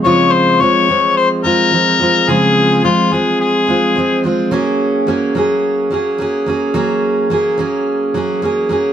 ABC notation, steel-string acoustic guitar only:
X:1
M:4/4
L:1/8
Q:"Swing 16ths" 1/4=108
K:Db
V:1 name="Steel-string acoustic guitar"
[D,F,A,CF]2 [F,A,CF] [F,A,CF]2 [F,A,CF] [F,A,CF] [F,A,CF] | [D,F,A,CF]2 [F,A,CF] [F,A,CF]2 [F,A,CF] [F,A,CF] [F,A,CF] | [G,B,DA]2 [G,B,DA] [G,B,DA]2 [G,B,DA] [G,B,DA] [G,B,DA] | [G,B,DA]2 [G,B,DA] [G,B,DA]2 [G,B,DA] [G,B,DA] [G,B,DA] |]